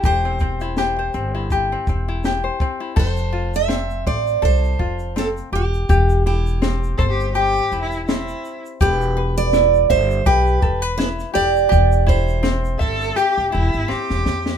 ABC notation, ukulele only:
X:1
M:4/4
L:1/16
Q:"Swing 16ths" 1/4=82
K:C
V:1 name="Ukulele"
[EG] C C E G c C E G C C E G c C E | A2 F2 C2 c2 A2 F2 C2 G2 | G2 E2 C2 c2 G2 E2 C4 | G2 B2 E2 e2 G2 A B E2 G2 |
G2 E2 C2 e2 G2 E2 C4 |]